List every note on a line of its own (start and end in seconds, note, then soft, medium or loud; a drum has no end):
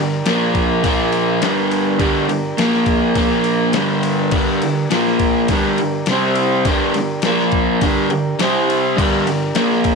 0.00 0.22 G2 medium
0.00 0.21 D3 medium
0.00 0.26 D4 medium
0.00 0.26 G4 medium
0.00 0.26 A#4 medium
0.26 0.83 A#2 medium
0.26 0.84 F3 loud
0.26 1.40 A#3 medium
0.26 0.84 A#3 loud
0.26 1.40 F4 medium
0.26 1.41 A#4 medium
0.26 snare loud
0.26 ride loud
0.55 kick medium
0.55 ride medium
0.84 1.41 A#2 loud
0.84 1.42 F3 loud
0.84 1.43 A#3 loud
0.84 kick medium
0.84 ride loud
1.12 ride medium
1.42 1.98 G2 medium
1.42 1.99 D3 loud
1.42 2.00 G3 medium
1.42 2.57 D4 medium
1.42 2.57 G4 medium
1.42 2.58 A#4 medium
1.42 snare loud
1.42 ride loud
1.71 ride medium
1.99 2.28 G2 loud
1.99 2.28 D3 loud
1.99 2.29 G3 loud
1.99 kick loud
1.99 ride medium
2.29 2.52 G2 medium
2.29 2.53 D3 medium
2.29 ride medium
2.58 3.15 A#2 medium
2.58 3.16 F3 medium
2.58 3.72 A#3 medium
2.58 3.16 A#3 loud
2.58 3.73 F4 medium
2.58 3.73 A#4 medium
2.58 snare loud
2.58 ride loud
2.74 snare soft
2.86 kick medium
2.86 ride medium
3.15 3.74 A#2 loud
3.15 3.74 F3 loud
3.15 3.74 A#3 loud
3.15 kick medium
3.15 ride medium
3.44 ride medium
3.73 4.31 G2 medium
3.73 4.32 D3 medium
3.73 4.33 G3 loud
3.73 4.89 D4 medium
3.73 4.89 G4 medium
3.73 4.89 A#4 medium
3.73 snare loud
3.73 ride medium
4.03 ride medium
4.31 4.61 G2 loud
4.31 4.61 D3 loud
4.31 4.61 G3 loud
4.31 kick loud
4.31 crash loud
4.62 4.86 G2 medium
4.62 4.86 D3 medium
4.62 ride medium
4.90 5.48 A#2 medium
4.90 5.48 F3 medium
4.90 5.48 A#3 medium
4.90 5.49 A#3 medium
4.90 5.50 F4 medium
4.90 5.50 A#4 medium
4.90 snare loud
4.90 ride loud
5.07 snare soft
5.19 kick medium
5.19 ride medium
5.48 5.78 G2 medium
5.48 5.78 D3 loud
5.48 5.79 G3 loud
5.48 6.09 D4 medium
5.48 6.07 G4 medium
5.48 kick medium
5.48 ride loud
5.53 6.09 A#4 medium
5.78 6.02 G2 medium
5.78 6.02 D3 medium
5.78 ride medium
6.06 6.65 C3 medium
6.06 6.65 G3 medium
6.06 6.66 C4 medium
6.06 6.66 G4 medium
6.06 6.66 C5 medium
6.06 snare loud
6.06 ride loud
6.11 6.66 C4 loud
6.35 ride medium
6.65 6.94 G2 loud
6.65 6.94 D3 loud
6.65 6.95 G3 loud
6.65 7.24 D4 medium
6.65 7.24 G4 medium
6.65 7.23 A#4 medium
6.65 kick loud
6.65 ride loud
6.94 7.19 G2 medium
6.94 7.19 D3 medium
6.94 snare soft
6.94 ride medium
7.22 7.81 A#2 medium
7.22 7.83 A#3 medium
7.22 7.82 A#3 loud
7.22 7.82 F4 medium
7.22 7.81 A#4 medium
7.22 snare loud
7.22 ride medium
7.26 7.82 F3 medium
7.39 snare soft
7.52 kick medium
7.52 ride medium
7.81 8.09 G2 loud
7.81 8.09 D3 loud
7.81 8.11 G3 loud
7.81 8.40 D4 medium
7.81 8.39 G4 medium
7.81 8.40 A#4 medium
7.81 kick medium
7.81 ride loud
8.10 8.33 G2 medium
8.10 8.34 D3 medium
8.10 ride medium
8.39 8.96 C3 medium
8.39 8.97 G3 medium
8.39 8.98 C4 medium
8.39 8.97 C4 loud
8.39 8.98 G4 medium
8.39 8.98 C5 medium
8.39 snare loud
8.39 ride loud
8.70 ride medium
8.96 9.25 G2 loud
8.96 9.25 D3 loud
8.96 9.26 G3 loud
8.96 9.56 D4 medium
8.96 kick loud
8.96 crash loud
9.00 9.57 G4 medium
9.00 9.56 A#4 medium
9.27 9.50 G2 medium
9.27 9.50 D3 medium
9.27 ride medium
9.55 9.95 A#2 medium
9.55 9.95 F3 medium
9.55 9.95 A#3 medium
9.55 9.95 F4 medium
9.55 9.95 A#4 medium
9.55 snare loud
9.55 ride loud
9.72 snare soft
9.84 kick medium
9.84 ride medium